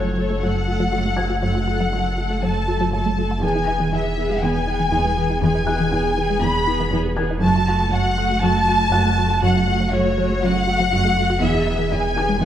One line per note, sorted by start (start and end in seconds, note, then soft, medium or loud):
0.00 3.44 F#1 medium
0.00 0.34 F#2 soft
0.00 0.16 A3 soft
0.00 0.16 A4 soft
0.00 0.42 C#5 medium
0.00 0.42 C#5 soft
0.00 1.14 F#6 soft
0.17 0.25 F#3 medium
0.17 0.41 A3 soft
0.17 0.41 A4 soft
0.30 0.38 A3 medium
0.42 0.85 F#2 medium
0.42 0.50 F#3 medium
0.42 0.66 A3 soft
0.42 0.66 A4 soft
0.42 1.41 F#5 medium
0.67 0.91 A3 soft
0.67 0.75 F#4 soft
0.67 0.91 A4 soft
0.80 0.88 F#3 medium
0.92 1.34 F#2 medium
0.92 1.15 A3 soft
0.92 1.00 F#4 medium
0.92 1.16 A4 soft
1.05 1.13 A3 medium
1.17 1.25 F#3 medium
1.17 1.41 A3 soft
1.17 1.41 A4 soft
1.17 2.63 G#6 soft
1.30 1.37 F#4 medium
1.42 1.84 F#2 medium
1.42 1.50 F#3 medium
1.42 1.67 A3 soft
1.42 1.66 A4 soft
1.42 2.40 F#5 medium
1.55 1.63 F#4 medium
1.68 1.92 A3 soft
1.68 1.75 F#4 medium
1.68 1.92 A4 soft
1.81 1.88 F#3 medium
1.93 2.35 F#2 medium
1.93 2.18 A3 soft
1.93 2.00 F#4 medium
1.93 2.17 A4 soft
2.18 2.25 F#3 medium
2.18 2.42 A3 soft
2.18 2.42 A4 soft
2.30 2.38 A3 medium
2.43 2.85 F#2 medium
2.43 2.50 F#3 medium
2.43 2.66 A3 soft
2.43 2.67 A4 soft
2.43 2.92 A5 medium
2.68 2.92 A3 soft
2.68 2.75 F#4 medium
2.68 2.91 A4 soft
2.81 2.88 F#3 medium
2.93 3.34 F#2 medium
2.93 3.16 A3 soft
2.93 3.00 F#4 medium
2.93 3.16 A4 soft
2.93 3.42 A5 soft
2.93 3.42 A5 medium
3.06 3.13 A3 medium
3.17 3.26 F#3 medium
3.17 3.42 A3 soft
3.17 3.42 A4 soft
3.31 3.38 F#4 medium
3.42 7.44 E1 medium
3.42 3.84 E2 medium
3.42 3.50 E3 medium
3.42 3.66 B3 soft
3.42 3.66 G#4 soft
3.42 3.93 G#5 medium
3.42 3.92 G#5 medium
3.55 3.63 E4 medium
3.67 3.91 B3 soft
3.67 3.75 E4 medium
3.67 3.92 G#4 soft
3.80 3.88 E3 medium
3.92 4.34 E2 medium
3.92 4.16 B3 soft
3.92 4.00 E4 soft
3.92 4.16 G#4 soft
3.92 4.42 E5 medium
3.92 4.43 E5 medium
4.17 4.25 E3 medium
4.17 4.41 B3 soft
4.17 4.41 G#4 soft
4.30 4.37 G#3 medium
4.42 4.84 E2 medium
4.42 4.50 E3 medium
4.42 4.66 B3 soft
4.42 4.66 G#4 soft
4.42 5.41 G#5 medium
4.42 5.42 G#5 medium
4.67 4.91 B3 soft
4.67 4.75 E4 soft
4.67 4.91 G#4 soft
4.80 4.87 E3 medium
4.92 5.35 E2 medium
4.92 5.15 B3 soft
4.92 5.00 E4 soft
4.92 5.15 G#4 medium
5.05 5.13 G#3 medium
5.16 5.25 E3 medium
5.16 5.40 B3 soft
5.16 5.40 G#4 soft
5.30 5.38 E4 medium
5.41 5.84 E2 medium
5.41 5.50 E3 medium
5.41 5.65 B3 soft
5.41 5.64 G#4 soft
5.41 6.40 G#5 medium
5.41 6.41 G#5 medium
5.55 5.62 E4 medium
5.66 5.90 B3 soft
5.66 5.75 E4 medium
5.66 5.90 G#4 soft
5.66 7.13 F#6 soft
5.80 5.88 E3 medium
5.91 6.34 E2 medium
5.91 6.15 B3 soft
5.91 6.00 E4 medium
5.91 6.15 G#4 soft
6.16 6.25 E3 medium
6.16 6.41 B3 soft
6.16 6.41 G#4 medium
6.30 6.37 G#3 medium
6.42 6.84 E2 medium
6.42 6.50 E3 medium
6.42 6.66 B3 soft
6.42 6.65 G#4 medium
6.42 6.92 B5 medium
6.67 6.90 B3 medium
6.67 6.75 E4 medium
6.67 6.90 G#4 medium
6.80 6.88 E3 medium
6.91 7.34 E2 medium
6.91 7.15 B3 medium
6.91 7.00 E4 medium
6.91 7.15 G#4 medium
7.05 7.13 G#3 medium
7.16 7.25 E3 medium
7.16 7.41 B3 medium
7.16 7.41 G#4 soft
7.16 8.63 G#6 soft
7.30 7.38 E4 medium
7.42 11.43 F#1 medium
7.42 7.85 F#2 medium
7.42 7.50 F#3 medium
7.42 7.65 A3 medium
7.42 7.65 F#4 medium
7.42 7.89 A5 medium
7.56 7.63 F#4 medium
7.67 7.91 A3 soft
7.67 7.91 F#4 soft
7.67 7.76 F#4 medium
7.81 7.88 F#3 medium
7.92 8.34 F#2 medium
7.92 8.16 A3 medium
7.92 8.15 F#4 soft
7.92 8.01 F#4 medium
7.92 8.42 F#5 medium
7.92 8.43 F#5 medium
8.17 8.25 F#3 medium
8.17 8.41 A3 medium
8.17 8.41 F#4 medium
8.31 8.38 A3 medium
8.42 8.85 F#2 medium
8.42 8.51 F#3 medium
8.42 8.66 A3 medium
8.42 8.66 F#4 medium
8.42 9.43 A5 loud
8.42 9.41 A5 loud
8.67 8.91 A3 medium
8.67 8.91 F#4 medium
8.67 8.76 F#4 medium
8.81 8.88 F#3 medium
8.92 9.34 F#2 medium
8.92 9.17 A3 medium
8.92 9.17 F#4 medium
8.92 9.00 F#4 medium
8.92 10.38 F#5 soft
8.92 10.38 F#6 soft
9.05 9.13 A3 medium
9.18 9.25 F#3 medium
9.18 9.42 A3 medium
9.18 9.41 F#4 soft
9.30 9.38 F#4 medium
9.42 9.84 F#2 medium
9.42 9.50 F#3 medium
9.42 9.66 A3 medium
9.42 9.66 F#4 medium
9.42 9.91 F#5 medium
9.42 9.92 F#5 medium
9.55 9.62 F#4 medium
9.67 9.91 A3 soft
9.67 9.91 F#4 medium
9.67 9.75 F#4 medium
9.80 9.88 F#3 medium
9.92 10.34 F#2 medium
9.92 10.16 A3 medium
9.92 10.16 F#4 medium
9.92 10.01 F#4 medium
9.92 10.42 C#5 medium
9.92 10.43 C#5 medium
10.17 10.25 F#3 medium
10.17 10.40 A3 medium
10.17 10.40 F#4 medium
10.30 10.37 A3 medium
10.42 10.84 F#2 medium
10.42 10.50 F#3 medium
10.42 10.65 A3 medium
10.42 10.65 F#4 medium
10.42 11.43 F#5 medium
10.42 11.43 F#5 loud
10.66 10.90 A3 medium
10.66 10.90 F#4 medium
10.66 10.75 F#4 soft
10.80 10.87 F#3 medium
10.91 11.34 F#2 medium
10.91 11.16 A3 medium
10.91 11.16 F#4 medium
10.91 11.00 F#4 medium
11.05 11.12 A3 medium
11.17 11.25 F#3 medium
11.17 11.42 A3 medium
11.17 11.42 F#4 soft
11.30 11.37 F#4 medium
11.42 12.45 E1 medium
11.42 11.84 E2 medium
11.42 11.50 E3 medium
11.42 11.66 B3 medium
11.42 11.66 G#4 medium
11.42 11.92 E5 medium
11.42 11.93 E5 medium
11.54 11.62 E4 medium
11.67 11.90 B3 medium
11.67 11.75 E4 soft
11.67 11.90 G#4 soft
11.79 11.87 E3 medium
11.91 12.34 E2 medium
11.91 12.15 B3 medium
11.91 11.99 E4 medium
11.91 12.15 G#4 soft
11.91 12.41 G#5 medium
11.91 12.43 G#5 medium
12.16 12.24 E3 medium
12.16 12.40 B3 medium
12.16 12.40 G#4 soft
12.16 12.45 G#5 soft
12.16 12.45 G#6 soft
12.29 12.37 G#3 medium
12.41 12.45 E2 medium
12.41 12.45 E3 medium
12.41 12.45 B3 soft
12.41 12.45 G#4 medium